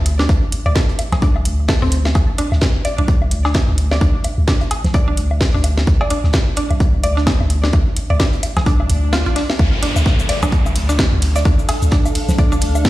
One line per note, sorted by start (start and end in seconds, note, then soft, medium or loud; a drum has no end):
0.00 0.26 D2 medium
0.06 closed hi-hat medium
0.19 0.23 D4 medium
0.19 snare medium
0.19 snare soft
0.29 0.40 D2 loud
0.29 kick loud
0.29 closed hi-hat medium
0.29 low woodblock soft
0.52 closed hi-hat medium
0.66 0.74 D2 loud
0.66 0.70 D5 medium
0.66 low woodblock soft
0.75 0.79 A4 medium
0.75 kick loud
0.75 snare loud
0.75 snare medium
0.75 closed hi-hat medium
0.89 closed hi-hat soft
0.99 closed hi-hat medium
0.99 low woodblock soft
1.12 1.47 C2 loud
1.12 snare soft
1.12 closed hi-hat soft
1.12 cowbell medium
1.12 low conga medium
1.22 1.27 D4 medium
1.22 kick loud
1.22 closed hi-hat medium
1.36 low woodblock soft
1.45 1.78 D2 medium
1.45 closed hi-hat medium
1.68 1.72 A4 medium
1.68 kick loud
1.68 snare loud
1.68 snare medium
1.68 open hi-hat medium
1.68 low woodblock soft
1.82 2.12 D2 medium
1.82 1.86 C4 loud
1.92 closed hi-hat medium
2.05 snare medium
2.05 low woodblock soft
2.15 2.26 D2 loud
2.15 kick loud
2.15 closed hi-hat medium
2.15 cowbell medium
2.15 low woodblock soft
2.38 2.44 D4 medium
2.38 closed hi-hat medium
2.52 2.60 D2 loud
2.52 snare soft
2.52 low woodblock soft
2.61 kick loud
2.61 snare medium
2.61 snare loud
2.61 closed hi-hat medium
2.85 2.90 D5 medium
2.85 closed hi-hat medium
2.85 low woodblock soft
2.98 3.33 C2 loud
2.98 3.00 D4 medium
2.98 closed hi-hat soft
3.08 kick loud
3.08 closed hi-hat medium
3.22 low woodblock soft
3.31 3.64 D2 medium
3.31 closed hi-hat medium
3.45 3.49 D4 medium
3.45 snare medium
3.45 cowbell medium
3.54 kick loud
3.54 snare loud
3.54 snare medium
3.54 closed hi-hat medium
3.54 low woodblock soft
3.68 3.98 D2 medium
3.78 closed hi-hat medium
3.91 3.95 D5 medium
3.91 snare medium
3.91 snare soft
3.91 low woodblock soft
4.01 4.12 D2 loud
4.01 4.03 D4 medium
4.01 kick loud
4.01 closed hi-hat medium
4.24 closed hi-hat medium
4.24 low woodblock soft
4.38 4.46 D2 loud
4.48 4.53 D4 medium
4.48 kick loud
4.48 snare medium
4.48 snare loud
4.48 closed hi-hat medium
4.61 closed hi-hat soft
4.61 low woodblock soft
4.71 closed hi-hat medium
4.71 cowbell medium
4.84 5.19 C2 loud
4.84 snare medium
4.84 closed hi-hat soft
4.84 low conga medium
4.94 4.99 D5 medium
4.94 kick loud
4.94 closed hi-hat medium
4.94 low woodblock soft
5.08 5.10 D4 medium
5.17 5.50 D2 medium
5.17 closed hi-hat medium
5.31 low woodblock soft
5.41 kick loud
5.41 snare medium
5.41 snare loud
5.41 open hi-hat medium
5.54 5.84 D2 medium
5.54 5.58 D4 medium
5.64 closed hi-hat medium
5.64 low woodblock soft
5.78 snare medium
5.87 5.98 D2 loud
5.87 kick loud
5.87 closed hi-hat medium
6.01 6.05 D5 medium
6.01 cowbell medium
6.01 low woodblock soft
6.10 6.13 D4 medium
6.10 closed hi-hat medium
6.24 6.32 D2 loud
6.24 snare soft
6.33 kick loud
6.33 snare loud
6.33 snare medium
6.33 closed hi-hat medium
6.33 low woodblock soft
6.56 6.62 D4 medium
6.56 closed hi-hat medium
6.71 7.05 C2 loud
6.71 closed hi-hat soft
6.71 low woodblock soft
6.80 kick loud
6.80 closed hi-hat medium
7.03 7.36 D2 medium
7.03 7.09 D5 medium
7.03 closed hi-hat medium
7.03 low woodblock soft
7.17 7.19 D4 medium
7.17 snare medium
7.27 kick loud
7.27 snare loud
7.27 snare medium
7.27 closed hi-hat medium
7.27 cowbell medium
7.40 7.71 D2 medium
7.40 low woodblock soft
7.50 closed hi-hat medium
7.64 7.67 D4 medium
7.64 snare medium
7.73 7.84 D2 loud
7.73 kick loud
7.73 closed hi-hat medium
7.73 low woodblock soft
7.96 closed hi-hat medium
8.10 8.18 D2 loud
8.10 8.14 D5 medium
8.10 low woodblock soft
8.20 8.22 D4 medium
8.20 kick loud
8.20 snare loud
8.20 snare medium
8.20 closed hi-hat soft
8.20 closed hi-hat medium
8.33 closed hi-hat soft
8.43 closed hi-hat medium
8.43 low woodblock soft
8.57 8.87 C2 loud
8.57 snare medium
8.57 closed hi-hat soft
8.57 cowbell medium
8.57 low conga medium
8.66 8.72 D4 medium
8.66 kick loud
8.66 closed hi-hat medium
8.66 swell medium
8.80 low woodblock soft
8.90 9.23 D2 medium
8.90 closed hi-hat medium
9.12 9.15 F4 medium
9.12 snare loud
9.12 snare medium
9.12 closed hi-hat medium
9.12 low woodblock soft
9.26 9.34 A1 medium
9.26 9.29 F4 medium
9.26 closed hi-hat soft
9.36 9.40 D4 medium
9.36 snare loud
9.36 closed hi-hat medium
9.36 open hi-hat medium
9.50 snare medium
9.50 low woodblock soft
9.59 9.70 D2 loud
9.59 12.90 D4 medium
9.59 kick loud
9.59 closed hi-hat medium
9.59 downlifter medium
9.59 low woodblock soft
9.83 9.88 D4 medium
9.83 closed hi-hat medium
9.83 ride medium
9.95 10.04 D2 loud
9.95 12.90 A4 medium
9.95 snare soft
9.95 low woodblock soft
9.95 shaker medium
10.06 kick loud
10.06 snare loud
10.06 closed hi-hat medium
10.14 12.90 F5 medium
10.19 shaker soft
10.29 10.34 D5 medium
10.29 closed hi-hat medium
10.29 ride medium
10.29 low woodblock soft
10.43 10.77 C2 loud
10.43 10.45 D4 medium
10.43 cowbell medium
10.43 low conga medium
10.43 shaker medium
10.52 kick loud
10.52 closed hi-hat medium
10.66 low woodblock soft
10.66 shaker soft
10.76 11.09 D2 medium
10.76 closed hi-hat medium
10.76 ride medium
10.89 10.93 D4 medium
10.89 snare medium
10.89 shaker medium
10.99 kick loud
10.99 snare loud
10.99 closed hi-hat medium
10.99 low woodblock soft
11.12 11.43 D2 medium
11.22 closed hi-hat medium
11.22 ride medium
11.36 11.39 D5 medium
11.36 snare medium
11.36 low woodblock soft
11.36 shaker medium
11.45 11.57 D2 loud
11.45 11.47 D4 medium
11.45 kick loud
11.45 closed hi-hat medium
11.59 shaker soft
11.69 closed hi-hat medium
11.69 ride medium
11.69 cowbell medium
11.69 low woodblock soft
11.82 11.90 D2 loud
11.82 shaker medium
11.91 11.97 D4 medium
11.91 kick loud
11.91 snare loud
11.91 closed hi-hat medium
12.05 closed hi-hat soft
12.05 low woodblock soft
12.05 shaker soft
12.15 closed hi-hat medium
12.15 ride medium
12.29 12.63 C2 loud
12.29 snare medium
12.29 low conga medium
12.29 shaker medium
12.38 12.44 D5 medium
12.38 kick loud
12.38 closed hi-hat medium
12.38 low woodblock soft
12.52 12.54 D4 medium
12.52 shaker soft
12.61 12.90 D2 medium
12.61 closed hi-hat medium
12.61 ride medium
12.75 low woodblock soft
12.75 shaker medium
12.85 kick loud
12.85 snare loud
12.85 open hi-hat medium